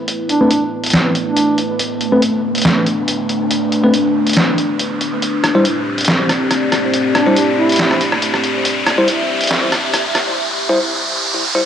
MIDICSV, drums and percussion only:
0, 0, Header, 1, 2, 480
1, 0, Start_track
1, 0, Tempo, 428571
1, 90, Time_signature, 4, 2, 24, 8
1, 13054, End_track
2, 0, Start_track
2, 0, Title_t, "Drums"
2, 89, Note_on_c, 9, 42, 75
2, 201, Note_off_c, 9, 42, 0
2, 329, Note_on_c, 9, 42, 52
2, 441, Note_off_c, 9, 42, 0
2, 567, Note_on_c, 9, 42, 82
2, 679, Note_off_c, 9, 42, 0
2, 937, Note_on_c, 9, 42, 50
2, 969, Note_off_c, 9, 42, 0
2, 969, Note_on_c, 9, 42, 62
2, 1012, Note_off_c, 9, 42, 0
2, 1012, Note_on_c, 9, 42, 76
2, 1048, Note_off_c, 9, 42, 0
2, 1048, Note_on_c, 9, 38, 117
2, 1048, Note_on_c, 9, 42, 80
2, 1160, Note_off_c, 9, 38, 0
2, 1160, Note_off_c, 9, 42, 0
2, 1290, Note_on_c, 9, 42, 57
2, 1402, Note_off_c, 9, 42, 0
2, 1530, Note_on_c, 9, 42, 78
2, 1642, Note_off_c, 9, 42, 0
2, 1770, Note_on_c, 9, 42, 57
2, 1882, Note_off_c, 9, 42, 0
2, 2010, Note_on_c, 9, 42, 75
2, 2122, Note_off_c, 9, 42, 0
2, 2249, Note_on_c, 9, 42, 52
2, 2361, Note_off_c, 9, 42, 0
2, 2489, Note_on_c, 9, 42, 78
2, 2601, Note_off_c, 9, 42, 0
2, 2856, Note_on_c, 9, 42, 48
2, 2889, Note_off_c, 9, 42, 0
2, 2889, Note_on_c, 9, 42, 62
2, 2931, Note_off_c, 9, 42, 0
2, 2931, Note_on_c, 9, 42, 77
2, 2969, Note_off_c, 9, 42, 0
2, 2969, Note_on_c, 9, 38, 122
2, 2969, Note_on_c, 9, 42, 78
2, 3081, Note_off_c, 9, 38, 0
2, 3081, Note_off_c, 9, 42, 0
2, 3209, Note_on_c, 9, 42, 54
2, 3321, Note_off_c, 9, 42, 0
2, 3448, Note_on_c, 9, 42, 80
2, 3560, Note_off_c, 9, 42, 0
2, 3688, Note_on_c, 9, 42, 54
2, 3800, Note_off_c, 9, 42, 0
2, 3927, Note_on_c, 9, 42, 76
2, 4039, Note_off_c, 9, 42, 0
2, 4168, Note_on_c, 9, 42, 52
2, 4280, Note_off_c, 9, 42, 0
2, 4409, Note_on_c, 9, 42, 78
2, 4521, Note_off_c, 9, 42, 0
2, 4778, Note_on_c, 9, 42, 46
2, 4809, Note_off_c, 9, 42, 0
2, 4809, Note_on_c, 9, 42, 62
2, 4852, Note_off_c, 9, 42, 0
2, 4852, Note_on_c, 9, 42, 75
2, 4890, Note_off_c, 9, 42, 0
2, 4890, Note_on_c, 9, 38, 118
2, 4890, Note_on_c, 9, 42, 76
2, 5002, Note_off_c, 9, 38, 0
2, 5002, Note_off_c, 9, 42, 0
2, 5130, Note_on_c, 9, 42, 54
2, 5242, Note_off_c, 9, 42, 0
2, 5369, Note_on_c, 9, 42, 76
2, 5481, Note_off_c, 9, 42, 0
2, 5609, Note_on_c, 9, 42, 52
2, 5721, Note_off_c, 9, 42, 0
2, 5850, Note_on_c, 9, 42, 74
2, 5962, Note_off_c, 9, 42, 0
2, 6090, Note_on_c, 9, 37, 73
2, 6090, Note_on_c, 9, 42, 50
2, 6202, Note_off_c, 9, 37, 0
2, 6202, Note_off_c, 9, 42, 0
2, 6329, Note_on_c, 9, 42, 74
2, 6441, Note_off_c, 9, 42, 0
2, 6698, Note_on_c, 9, 42, 45
2, 6728, Note_off_c, 9, 42, 0
2, 6728, Note_on_c, 9, 42, 59
2, 6772, Note_off_c, 9, 42, 0
2, 6772, Note_on_c, 9, 42, 76
2, 6809, Note_off_c, 9, 42, 0
2, 6809, Note_on_c, 9, 38, 118
2, 6809, Note_on_c, 9, 42, 73
2, 6921, Note_off_c, 9, 38, 0
2, 6921, Note_off_c, 9, 42, 0
2, 7049, Note_on_c, 9, 37, 58
2, 7049, Note_on_c, 9, 42, 49
2, 7161, Note_off_c, 9, 37, 0
2, 7161, Note_off_c, 9, 42, 0
2, 7287, Note_on_c, 9, 37, 49
2, 7287, Note_on_c, 9, 42, 74
2, 7399, Note_off_c, 9, 37, 0
2, 7399, Note_off_c, 9, 42, 0
2, 7528, Note_on_c, 9, 37, 59
2, 7528, Note_on_c, 9, 42, 51
2, 7640, Note_off_c, 9, 37, 0
2, 7640, Note_off_c, 9, 42, 0
2, 7768, Note_on_c, 9, 42, 72
2, 7880, Note_off_c, 9, 42, 0
2, 8008, Note_on_c, 9, 37, 77
2, 8008, Note_on_c, 9, 42, 50
2, 8120, Note_off_c, 9, 37, 0
2, 8120, Note_off_c, 9, 42, 0
2, 8249, Note_on_c, 9, 42, 76
2, 8361, Note_off_c, 9, 42, 0
2, 8617, Note_on_c, 9, 42, 44
2, 8648, Note_off_c, 9, 42, 0
2, 8648, Note_on_c, 9, 42, 58
2, 8692, Note_off_c, 9, 42, 0
2, 8692, Note_on_c, 9, 42, 75
2, 8728, Note_off_c, 9, 42, 0
2, 8728, Note_on_c, 9, 38, 115
2, 8728, Note_on_c, 9, 42, 73
2, 8840, Note_off_c, 9, 38, 0
2, 8840, Note_off_c, 9, 42, 0
2, 8857, Note_on_c, 9, 37, 53
2, 8969, Note_off_c, 9, 37, 0
2, 8969, Note_on_c, 9, 42, 52
2, 9081, Note_off_c, 9, 42, 0
2, 9097, Note_on_c, 9, 37, 52
2, 9208, Note_on_c, 9, 42, 75
2, 9209, Note_off_c, 9, 37, 0
2, 9320, Note_off_c, 9, 42, 0
2, 9338, Note_on_c, 9, 37, 52
2, 9449, Note_on_c, 9, 42, 53
2, 9450, Note_off_c, 9, 37, 0
2, 9561, Note_off_c, 9, 42, 0
2, 9688, Note_on_c, 9, 42, 79
2, 9800, Note_off_c, 9, 42, 0
2, 9928, Note_on_c, 9, 37, 80
2, 9928, Note_on_c, 9, 42, 51
2, 10040, Note_off_c, 9, 37, 0
2, 10040, Note_off_c, 9, 42, 0
2, 10168, Note_on_c, 9, 42, 78
2, 10280, Note_off_c, 9, 42, 0
2, 10536, Note_on_c, 9, 42, 47
2, 10568, Note_off_c, 9, 42, 0
2, 10568, Note_on_c, 9, 42, 62
2, 10611, Note_off_c, 9, 42, 0
2, 10611, Note_on_c, 9, 42, 75
2, 10649, Note_off_c, 9, 42, 0
2, 10649, Note_on_c, 9, 38, 110
2, 10649, Note_on_c, 9, 42, 79
2, 10761, Note_off_c, 9, 38, 0
2, 10761, Note_off_c, 9, 42, 0
2, 10888, Note_on_c, 9, 37, 64
2, 10888, Note_on_c, 9, 42, 54
2, 11000, Note_off_c, 9, 37, 0
2, 11000, Note_off_c, 9, 42, 0
2, 11128, Note_on_c, 9, 37, 54
2, 11128, Note_on_c, 9, 42, 78
2, 11240, Note_off_c, 9, 37, 0
2, 11240, Note_off_c, 9, 42, 0
2, 11368, Note_on_c, 9, 37, 64
2, 11368, Note_on_c, 9, 42, 52
2, 11480, Note_off_c, 9, 37, 0
2, 11480, Note_off_c, 9, 42, 0
2, 13054, End_track
0, 0, End_of_file